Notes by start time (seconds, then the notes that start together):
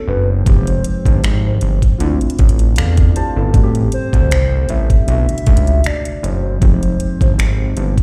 Already playing: A3 B3 C#4 D4 F#4 A4
0.08 F#1 B4
0.29 C5
0.44 F1 F3 G#3 C4 D#4, kick, closed hi-hat
0.49 G4
0.67 closed hi-hat
0.84 closed hi-hat
1.05 G1, kick, closed hi-hat
1.23 G#1, finger snap, closed hi-hat
1.61 G1, closed hi-hat
1.82 kick, closed hi-hat
1.98 D2 A3 C4 D4 F4, closed hi-hat
2.03 E4
2.21 A1, closed hi-hat
2.30 closed hi-hat
2.39 A1, kick, closed hi-hat
2.49 closed hi-hat
2.59 closed hi-hat
2.76 E2 A4 D5 F5, finger snap, closed hi-hat
2.97 kick, closed hi-hat
3.16 G4 C5 A5, closed hi-hat
3.36 G1 E4 A4
3.52 A1 E3 G3 A3 C4, kick, closed hi-hat
3.57 F#4
3.63 G4
3.75 closed hi-hat
3.92 C5, closed hi-hat
4.13 D2, kick, closed hi-hat
4.31 C2, finger snap, closed hi-hat
4.69 A1 E5, closed hi-hat
4.90 kick, closed hi-hat
5.06 B1 B2 A3 D4 E5, closed hi-hat
5.11 F#4
5.29 C#2, closed hi-hat
5.38 closed hi-hat
5.46 C#2, kick, closed hi-hat
5.57 closed hi-hat
5.67 closed hi-hat
5.84 D5, finger snap, closed hi-hat
6.05 closed hi-hat
6.23 F#1 C5, closed hi-hat
6.60 F1 F3 G#3 C4 D#4, kick, closed hi-hat
6.64 G4
6.83 closed hi-hat
7.00 closed hi-hat
7.21 G1, kick, closed hi-hat
7.38 G#1, finger snap, closed hi-hat
7.77 G1, closed hi-hat
7.98 kick, closed hi-hat